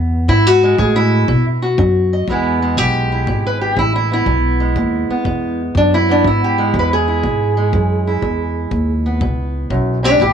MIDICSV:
0, 0, Header, 1, 5, 480
1, 0, Start_track
1, 0, Key_signature, 4, "major"
1, 0, Tempo, 495868
1, 282, Time_signature, 4, 2, 24, 8
1, 9999, End_track
2, 0, Start_track
2, 0, Title_t, "Steel-string acoustic guitar"
2, 0, Program_c, 0, 25
2, 0, Note_on_c, 0, 52, 70
2, 0, Note_on_c, 0, 59, 53
2, 252, Note_off_c, 0, 52, 0
2, 280, Note_on_c, 0, 64, 104
2, 288, Note_on_c, 0, 40, 76
2, 441, Note_off_c, 0, 64, 0
2, 451, Note_off_c, 0, 59, 0
2, 451, Note_on_c, 0, 66, 94
2, 613, Note_on_c, 0, 56, 55
2, 733, Note_off_c, 0, 40, 0
2, 758, Note_on_c, 0, 52, 62
2, 761, Note_off_c, 0, 66, 0
2, 764, Note_on_c, 0, 68, 98
2, 922, Note_off_c, 0, 68, 0
2, 928, Note_on_c, 0, 64, 104
2, 1209, Note_off_c, 0, 52, 0
2, 1246, Note_on_c, 0, 47, 72
2, 1248, Note_off_c, 0, 56, 0
2, 1405, Note_off_c, 0, 64, 0
2, 1572, Note_on_c, 0, 66, 55
2, 1692, Note_off_c, 0, 47, 0
2, 1727, Note_on_c, 0, 63, 72
2, 2062, Note_on_c, 0, 75, 52
2, 2173, Note_off_c, 0, 63, 0
2, 2189, Note_off_c, 0, 66, 0
2, 2194, Note_off_c, 0, 75, 0
2, 2212, Note_on_c, 0, 40, 68
2, 2220, Note_on_c, 0, 52, 46
2, 2228, Note_on_c, 0, 56, 50
2, 2238, Note_on_c, 0, 59, 47
2, 2242, Note_on_c, 0, 64, 52
2, 2537, Note_off_c, 0, 56, 0
2, 2540, Note_on_c, 0, 56, 51
2, 2656, Note_off_c, 0, 40, 0
2, 2689, Note_off_c, 0, 59, 0
2, 2689, Note_on_c, 0, 67, 88
2, 2692, Note_off_c, 0, 52, 0
2, 2696, Note_on_c, 0, 52, 60
2, 3017, Note_off_c, 0, 64, 0
2, 3021, Note_on_c, 0, 64, 44
2, 3139, Note_off_c, 0, 52, 0
2, 3177, Note_on_c, 0, 47, 61
2, 3327, Note_off_c, 0, 67, 0
2, 3355, Note_on_c, 0, 71, 76
2, 3495, Note_off_c, 0, 71, 0
2, 3499, Note_on_c, 0, 67, 73
2, 3619, Note_off_c, 0, 47, 0
2, 3652, Note_off_c, 0, 67, 0
2, 3652, Note_on_c, 0, 52, 66
2, 3661, Note_off_c, 0, 64, 0
2, 3665, Note_on_c, 0, 64, 85
2, 3816, Note_off_c, 0, 64, 0
2, 3830, Note_on_c, 0, 64, 78
2, 3978, Note_off_c, 0, 64, 0
2, 3984, Note_on_c, 0, 59, 47
2, 4002, Note_on_c, 0, 64, 83
2, 4097, Note_off_c, 0, 52, 0
2, 4131, Note_on_c, 0, 40, 72
2, 4450, Note_off_c, 0, 56, 0
2, 4454, Note_on_c, 0, 56, 47
2, 4577, Note_off_c, 0, 40, 0
2, 4617, Note_on_c, 0, 52, 60
2, 4938, Note_off_c, 0, 59, 0
2, 4941, Note_on_c, 0, 59, 49
2, 5060, Note_off_c, 0, 52, 0
2, 5095, Note_on_c, 0, 47, 57
2, 5426, Note_off_c, 0, 64, 0
2, 5539, Note_off_c, 0, 47, 0
2, 5588, Note_on_c, 0, 62, 85
2, 5738, Note_off_c, 0, 62, 0
2, 5751, Note_on_c, 0, 64, 88
2, 5890, Note_off_c, 0, 59, 0
2, 5894, Note_on_c, 0, 59, 42
2, 5917, Note_on_c, 0, 62, 76
2, 6043, Note_on_c, 0, 40, 70
2, 6060, Note_off_c, 0, 64, 0
2, 6063, Note_off_c, 0, 62, 0
2, 6073, Note_on_c, 0, 64, 76
2, 6232, Note_off_c, 0, 59, 0
2, 6236, Note_on_c, 0, 67, 78
2, 6368, Note_off_c, 0, 56, 0
2, 6372, Note_on_c, 0, 56, 52
2, 6493, Note_off_c, 0, 40, 0
2, 6537, Note_on_c, 0, 52, 62
2, 6542, Note_off_c, 0, 67, 0
2, 6574, Note_on_c, 0, 71, 84
2, 6700, Note_off_c, 0, 64, 0
2, 6706, Note_off_c, 0, 71, 0
2, 6710, Note_on_c, 0, 68, 89
2, 6852, Note_on_c, 0, 64, 46
2, 6980, Note_off_c, 0, 52, 0
2, 7000, Note_on_c, 0, 47, 58
2, 7317, Note_off_c, 0, 56, 0
2, 7328, Note_on_c, 0, 56, 47
2, 7451, Note_off_c, 0, 47, 0
2, 7486, Note_on_c, 0, 52, 64
2, 7811, Note_off_c, 0, 64, 0
2, 7815, Note_on_c, 0, 64, 43
2, 7934, Note_off_c, 0, 52, 0
2, 7962, Note_on_c, 0, 40, 73
2, 8411, Note_off_c, 0, 40, 0
2, 8616, Note_off_c, 0, 68, 0
2, 8768, Note_on_c, 0, 59, 49
2, 8920, Note_on_c, 0, 47, 62
2, 9368, Note_off_c, 0, 47, 0
2, 9398, Note_on_c, 0, 42, 63
2, 9705, Note_off_c, 0, 42, 0
2, 9709, Note_on_c, 0, 44, 59
2, 9722, Note_on_c, 0, 62, 74
2, 9730, Note_off_c, 0, 59, 0
2, 9730, Note_on_c, 0, 67, 83
2, 9875, Note_off_c, 0, 44, 0
2, 9880, Note_off_c, 0, 67, 0
2, 9881, Note_off_c, 0, 62, 0
2, 9882, Note_on_c, 0, 45, 76
2, 9883, Note_off_c, 0, 56, 0
2, 9883, Note_off_c, 0, 64, 0
2, 9883, Note_on_c, 0, 64, 66
2, 9891, Note_on_c, 0, 67, 85
2, 9932, Note_off_c, 0, 64, 0
2, 9999, Note_off_c, 0, 45, 0
2, 9999, Note_off_c, 0, 67, 0
2, 9999, End_track
3, 0, Start_track
3, 0, Title_t, "Upright bass"
3, 0, Program_c, 1, 32
3, 0, Note_on_c, 1, 40, 101
3, 264, Note_off_c, 1, 40, 0
3, 274, Note_on_c, 1, 44, 94
3, 744, Note_off_c, 1, 44, 0
3, 758, Note_on_c, 1, 45, 100
3, 1226, Note_off_c, 1, 45, 0
3, 1239, Note_on_c, 1, 47, 82
3, 1707, Note_off_c, 1, 47, 0
3, 1722, Note_on_c, 1, 42, 91
3, 2189, Note_off_c, 1, 42, 0
3, 2203, Note_on_c, 1, 40, 85
3, 2669, Note_off_c, 1, 40, 0
3, 2684, Note_on_c, 1, 35, 85
3, 3150, Note_off_c, 1, 35, 0
3, 3165, Note_on_c, 1, 32, 71
3, 3631, Note_off_c, 1, 32, 0
3, 3645, Note_on_c, 1, 33, 86
3, 4111, Note_off_c, 1, 33, 0
3, 4124, Note_on_c, 1, 35, 83
3, 4591, Note_off_c, 1, 35, 0
3, 4605, Note_on_c, 1, 39, 85
3, 4903, Note_off_c, 1, 39, 0
3, 5081, Note_on_c, 1, 40, 77
3, 5550, Note_off_c, 1, 40, 0
3, 5564, Note_on_c, 1, 42, 87
3, 6031, Note_off_c, 1, 42, 0
3, 6043, Note_on_c, 1, 44, 84
3, 6511, Note_off_c, 1, 44, 0
3, 6522, Note_on_c, 1, 40, 89
3, 6990, Note_off_c, 1, 40, 0
3, 7004, Note_on_c, 1, 44, 78
3, 7471, Note_off_c, 1, 44, 0
3, 7481, Note_on_c, 1, 42, 92
3, 7949, Note_off_c, 1, 42, 0
3, 7958, Note_on_c, 1, 40, 76
3, 8427, Note_off_c, 1, 40, 0
3, 8433, Note_on_c, 1, 39, 95
3, 8903, Note_off_c, 1, 39, 0
3, 8913, Note_on_c, 1, 37, 77
3, 9383, Note_off_c, 1, 37, 0
3, 9391, Note_on_c, 1, 35, 86
3, 9861, Note_off_c, 1, 35, 0
3, 9870, Note_on_c, 1, 33, 87
3, 9999, Note_off_c, 1, 33, 0
3, 9999, End_track
4, 0, Start_track
4, 0, Title_t, "Muted upright bass strokes"
4, 4931, Note_on_c, 9, 29, 40
4, 5028, Note_off_c, 9, 29, 0
4, 9999, End_track
5, 0, Start_track
5, 0, Title_t, "Drums"
5, 280, Note_on_c, 9, 36, 75
5, 376, Note_off_c, 9, 36, 0
5, 760, Note_on_c, 9, 36, 68
5, 857, Note_off_c, 9, 36, 0
5, 1241, Note_on_c, 9, 36, 75
5, 1338, Note_off_c, 9, 36, 0
5, 1723, Note_on_c, 9, 36, 74
5, 1820, Note_off_c, 9, 36, 0
5, 2203, Note_on_c, 9, 36, 61
5, 2300, Note_off_c, 9, 36, 0
5, 2684, Note_on_c, 9, 36, 62
5, 2781, Note_off_c, 9, 36, 0
5, 3167, Note_on_c, 9, 36, 68
5, 3264, Note_off_c, 9, 36, 0
5, 3647, Note_on_c, 9, 36, 64
5, 3744, Note_off_c, 9, 36, 0
5, 4126, Note_on_c, 9, 36, 64
5, 4223, Note_off_c, 9, 36, 0
5, 4606, Note_on_c, 9, 36, 64
5, 4703, Note_off_c, 9, 36, 0
5, 5084, Note_on_c, 9, 36, 67
5, 5180, Note_off_c, 9, 36, 0
5, 5565, Note_on_c, 9, 36, 62
5, 5662, Note_off_c, 9, 36, 0
5, 6045, Note_on_c, 9, 36, 70
5, 6142, Note_off_c, 9, 36, 0
5, 6523, Note_on_c, 9, 36, 66
5, 6620, Note_off_c, 9, 36, 0
5, 7004, Note_on_c, 9, 36, 67
5, 7101, Note_off_c, 9, 36, 0
5, 7483, Note_on_c, 9, 36, 69
5, 7580, Note_off_c, 9, 36, 0
5, 7961, Note_on_c, 9, 36, 61
5, 8058, Note_off_c, 9, 36, 0
5, 8436, Note_on_c, 9, 36, 68
5, 8533, Note_off_c, 9, 36, 0
5, 8915, Note_on_c, 9, 36, 73
5, 9012, Note_off_c, 9, 36, 0
5, 9395, Note_on_c, 9, 36, 65
5, 9492, Note_off_c, 9, 36, 0
5, 9874, Note_on_c, 9, 36, 67
5, 9970, Note_off_c, 9, 36, 0
5, 9999, End_track
0, 0, End_of_file